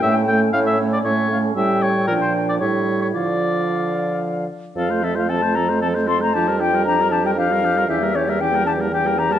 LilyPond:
<<
  \new Staff \with { instrumentName = "Flute" } { \time 3/4 \key d \minor \tempo 4 = 115 g''4 cis''4 e''8 f''8 | g''2 e''4 | f''2~ f''8 r8 | \key f \major f''8 e''16 f''16 a''8 bes''8 a''8 c'''16 bes''16 |
a''8 g''8 bes''8 a''16 g''16 f''4 | e''8 cis''16 e''16 g''8 a''8 g''8 bes''16 a''16 | }
  \new Staff \with { instrumentName = "Oboe" } { \time 3/4 \key d \minor e''8 g''8 f''16 e''8 d''16 cis''8. r16 | e''8 cis''8 bes'16 c''8 d''16 cis''8. cis''16 | d''2 r4 | \key f \major a'16 c''16 a'16 c''16 a'16 c''16 a'16 c''16 a'16 c''16 a'16 c''16 |
g'16 bes'16 g'16 bes'16 g'16 bes'16 g'16 bes'16 g'16 bes'16 g'16 bes'16 | g'16 bes'16 g'16 bes'16 g'16 bes'16 g'16 bes'16 g'16 bes'16 g'16 bes'16 | }
  \new Staff \with { instrumentName = "Clarinet" } { \time 3/4 \key d \minor cis'8 cis'8 cis'8 cis'8 cis'8 cis'8 | cis'4 d'4 e'4 | f'2~ f'8 r8 | \key f \major c'16 f'16 c'16 f'16 c'16 f'16 c'16 f'16 c'16 f'16 c'16 f'16 |
d'16 f'16 d'16 f'16 d'16 f'16 d'16 f'16 d'16 f'16 d'16 f'16 | cis'16 bes16 cis'16 bes16 cis'16 bes16 cis'16 bes16 cis'16 bes16 cis'16 bes16 | }
  \new Staff \with { instrumentName = "French horn" } { \clef bass \time 3/4 \key d \minor a8 a8 a8 a8 a8 a8 | g4 f4 g4 | f2~ f8 r8 | \key f \major f16 a16 f16 a16 f16 a16 f16 a16 f16 a16 f16 a16 |
f16 g16 f16 g16 f16 g16 f16 g16 f16 g16 f16 g16 | e16 g16 e16 g16 e16 g16 e16 g16 e16 g16 e16 g16 | }
  \new Staff \with { instrumentName = "Bassoon" } { \clef bass \time 3/4 \key d \minor a,4 a,4 a,4 | a,4 bes,4 a,4 | d2~ d8 r8 | \key f \major f,2.~ |
f,2. | e,2. | }
>>